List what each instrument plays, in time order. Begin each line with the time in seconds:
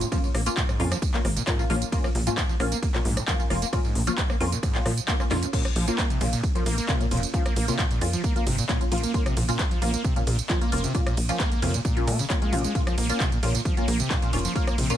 0.01 acid bass A#2, closed hi-hat, tambourine
0.12 acid bass F3, synth stab A#3 C#4 F4, kick, cross-stick, closed hi-hat, ride, tambourine
0.24 tambourine
0.35 analog synth bass A#1, acid bass A#3, cross-stick, open hi-hat
0.46 acid bass A#3, synth stab A#3 C#4 F4, closed hi-hat, tambourine
0.57 acid bass A#2, kick, clap, closed hi-hat, ride, tambourine
0.69 acid bass G#2, cross-stick, tambourine
0.80 analog synth bass F2, acid bass A#2, synth stab A#3 C#4 F4, open hi-hat
0.91 acid bass F3, cross-stick, closed hi-hat, tambourine
1.02 kick, closed hi-hat, ride, tambourine
1.14 acid bass A#3, synth stab A#3 C#4 F4, clap, tambourine
1.25 analog synth bass G#1, acid bass A#3, cross-stick, open hi-hat
1.36 acid bass A#2, closed hi-hat, tambourine
1.47 acid bass G#2, synth stab A#3 C#4 F4, kick, cross-stick, clap, closed hi-hat, ride, tambourine
1.59 acid bass A#2, synth stab A#3 C#4 F4, tambourine
1.70 analog synth bass A#1, acid bass F3, synth stab A#3 C#4 F4, open hi-hat
1.82 closed hi-hat, tambourine
1.92 synth stab A#3 C#4 F4, acid bass A#3, kick, closed hi-hat, ride, tambourine
2.04 acid bass A#3, cross-stick, tambourine
2.15 analog synth bass A#1, acid bass A#2, open hi-hat
2.27 acid bass G#2, synth stab A#3 C#4 F4, closed hi-hat, tambourine
2.37 acid bass A#2, kick, cross-stick, clap, closed hi-hat, ride, tambourine
2.49 acid bass F3, tambourine
2.60 analog synth bass A#1, synth stab A#3 C#4 F4, cross-stick, open hi-hat
2.72 acid bass A#3, closed hi-hat, tambourine
2.83 acid bass A#3, kick, closed hi-hat, ride, tambourine
2.94 acid bass A#2, synth stab A#3 C#4 F4, cross-stick, clap, tambourine
3.05 analog synth bass A#1, acid bass G#2, open hi-hat
3.17 acid bass A#2, cross-stick, closed hi-hat, tambourine
3.28 acid bass F3, synth stab A#3 C#4 F4, kick, clap, closed hi-hat, ride, tambourine
3.39 synth stab A#3 C#4 F4, tambourine
3.50 analog synth bass F1, synth stab A#3 C#4 F4, acid bass A#3, cross-stick, open hi-hat
3.62 acid bass A#3, closed hi-hat, tambourine
3.73 acid bass A#2, synth stab A#3 C#4 F4, kick, cross-stick, closed hi-hat, ride, tambourine
3.85 acid bass G#2, tambourine
3.95 analog synth bass A#1, acid bass A#2, open hi-hat
4.07 acid bass F3, synth stab A#3 C#4 F4, cross-stick, closed hi-hat, tambourine
4.18 kick, clap, closed hi-hat, ride, tambourine
4.30 acid bass A#3, cross-stick, tambourine
4.40 analog synth bass F2, synth stab A#3 C#4 F4, acid bass A#3, open hi-hat
4.52 acid bass A#2, closed hi-hat, tambourine
4.63 acid bass G#2, kick, cross-stick, closed hi-hat, ride, tambourine
4.75 acid bass A#2, synth stab A#3 C#4 F4, clap, tambourine
4.86 analog synth bass A#2, acid bass F3, cross-stick, open hi-hat
4.97 closed hi-hat, tambourine
5.08 synth stab A#3 C#4 F4, acid bass A#3, kick, clap, closed hi-hat, ride, tambourine
5.20 synth stab A#3 C#4 F4, acid bass A#3, cross-stick, tambourine
5.31 analog synth bass F2, acid bass A#2, synth stab A#3 C#4 F4, snare, open hi-hat
5.43 acid bass G#2, closed hi-hat, tambourine
5.53 acid bass A#2, synth stab A#3 C#4 F4, kick, closed hi-hat, crash, ride, tambourine
5.65 cross-stick, closed hi-hat, tambourine
5.76 analog synth bass A#1, acid bass F3, open hi-hat, ride
5.88 synth stab A#3 C#4 F4, acid bass A#3, closed hi-hat, tambourine
5.98 acid bass A#3, kick, clap, closed hi-hat, ride, tambourine
6.10 acid bass C3, closed hi-hat, tambourine
6.21 analog synth bass A#1, acid bass A#2, synth stab A#3 C#4 F4, open hi-hat, ride
6.33 acid bass A#2, closed hi-hat, tambourine
6.43 kick, closed hi-hat, ride, tambourine
6.55 acid bass F3, synth stab A#3 C#4 F4, closed hi-hat, tambourine
6.66 analog synth bass A#1, acid bass A#3, open hi-hat, ride
6.78 acid bass A#3, closed hi-hat, tambourine
6.89 acid bass C3, synth stab A#3 C#4 F4, kick, clap, closed hi-hat, ride, tambourine
7.00 acid bass A#2, synth stab A#3 C#4 F4, closed hi-hat, tambourine
7.11 analog synth bass F1, acid bass A#2, synth stab A#3 C#4 F4, open hi-hat, ride
7.17 closed hi-hat
7.23 closed hi-hat, tambourine
7.34 acid bass F3, synth stab A#3 C#4 F4, kick, closed hi-hat, ride, tambourine
7.46 acid bass A#3, cross-stick, closed hi-hat, tambourine
7.56 analog synth bass A#1, acid bass A#3, open hi-hat, ride
7.68 acid bass C3, synth stab A#3 C#4 F4, closed hi-hat, tambourine
7.79 acid bass A#2, kick, clap, closed hi-hat, ride, tambourine
7.91 acid bass A#2, closed hi-hat, tambourine
8.01 analog synth bass F2, synth stab A#3 C#4 F4, open hi-hat, ride
8.13 acid bass F3, closed hi-hat, tambourine
8.24 acid bass A#3, kick, closed hi-hat, ride, tambourine
8.36 synth stab A#3 C#4 F4, acid bass A#3, closed hi-hat, tambourine
8.47 analog synth bass G#1, acid bass C3, open hi-hat, ride
8.58 acid bass A#2, closed hi-hat, tambourine
8.69 acid bass A#2, synth stab A#3 C#4 F4, kick, clap, closed hi-hat, ride, tambourine
8.81 synth stab A#3 C#4 F4, closed hi-hat, tambourine
8.92 analog synth bass A#1, acid bass F3, synth stab A#3 C#4 F4, open hi-hat, ride
8.98 closed hi-hat
9.03 acid bass A#3, closed hi-hat, tambourine
9.14 synth stab A#3 C#4 F4, acid bass A#3, kick, closed hi-hat, ride, tambourine
9.26 acid bass C3, cross-stick, closed hi-hat, tambourine
9.37 analog synth bass A#1, acid bass A#2, open hi-hat, ride
9.48 acid bass A#2, synth stab A#3 C#4 F4, closed hi-hat, tambourine
9.59 kick, clap, closed hi-hat, ride, tambourine
9.71 acid bass F3, closed hi-hat, tambourine
9.82 analog synth bass A#1, synth stab A#3 C#4 F4, acid bass A#3, open hi-hat, ride
9.94 acid bass A#3, closed hi-hat, tambourine
10.04 acid bass C3, kick, closed hi-hat, ride, tambourine
10.16 acid bass A#2, synth stab A#3 C#4 F4, closed hi-hat, tambourine
10.27 analog synth bass A#1, acid bass A#2, open hi-hat, ride
10.39 closed hi-hat, tambourine
10.50 acid bass F3, synth stab A#3 C#4 F4, kick, clap, closed hi-hat, ride, tambourine
10.61 synth stab A#3 C#4 F4, acid bass A#3, closed hi-hat, tambourine
10.72 analog synth bass F1, synth stab A#3 C#4 F4, acid bass A#3, open hi-hat, ride
10.78 closed hi-hat
10.84 acid bass C3, closed hi-hat, tambourine
10.95 acid bass A#2, synth stab A#3 C#4 F4, kick, closed hi-hat, ride, tambourine
11.06 acid bass A#2, cross-stick, closed hi-hat, tambourine
11.17 analog synth bass A#1, open hi-hat, ride
11.29 acid bass F3, synth stab A#3 C#4 F4, closed hi-hat, tambourine
11.40 acid bass A#3, kick, clap, closed hi-hat, ride, tambourine
11.52 acid bass A#3, closed hi-hat, tambourine
11.62 analog synth bass F2, acid bass C3, synth stab A#3 C#4 F4, open hi-hat, ride
11.74 acid bass A#2, closed hi-hat, tambourine
11.85 acid bass A#2, kick, closed hi-hat, ride, tambourine
11.97 synth stab A#3 C#4 F4, closed hi-hat, tambourine
12.07 analog synth bass A#2, acid bass A#3, open hi-hat, ride
12.19 acid bass C#3, closed hi-hat, tambourine
12.30 synth stab A#3 C#4 F4, kick, clap, closed hi-hat, ride, tambourine
12.42 acid bass G#3, synth stab A#3 C#4 F4, closed hi-hat, tambourine
12.52 analog synth bass A#1, acid bass A#2, synth stab A#3 C#4 F4, open hi-hat, ride
12.59 closed hi-hat
12.64 acid bass G#3, closed hi-hat, tambourine
12.75 acid bass A#2, synth stab A#3 C#4 F4, kick, closed hi-hat, ride, tambourine
12.87 acid bass F3, cross-stick, closed hi-hat, tambourine
12.98 analog synth bass A#1, acid bass A#3, open hi-hat, ride
13.09 synth stab A#3 C#4 F4, acid bass A#3, closed hi-hat, tambourine
13.20 acid bass C3, kick, clap, closed hi-hat, ride, tambourine
13.32 acid bass A#2, closed hi-hat, tambourine
13.43 analog synth bass A#1, acid bass A#2, synth stab A#3 C#4 F4, open hi-hat, ride
13.55 acid bass A#2, closed hi-hat, tambourine
13.65 acid bass F3, kick, closed hi-hat, ride, tambourine
13.77 synth stab A#3 C#4 F4, acid bass A#3, closed hi-hat, tambourine
13.88 analog synth bass A#1, acid bass A#3, open hi-hat, ride
14.00 acid bass C3, closed hi-hat, tambourine
14.10 acid bass A#2, synth stab A#3 C#4 F4, kick, clap, closed hi-hat, ride, tambourine
14.22 acid bass A#2, synth stab A#3 C#4 F4, closed hi-hat, tambourine
14.33 analog synth bass F1, acid bass A#2, synth stab A#3 C#4 F4, open hi-hat, ride
14.39 closed hi-hat
14.45 acid bass F3, closed hi-hat, tambourine
14.56 synth stab A#3 C#4 F4, acid bass A#3, kick, closed hi-hat, ride, tambourine
14.67 acid bass A#3, cross-stick, closed hi-hat, tambourine
14.78 analog synth bass A#1, acid bass C3, open hi-hat, ride
14.90 acid bass A#2, synth stab A#3 C#4 F4, closed hi-hat, tambourine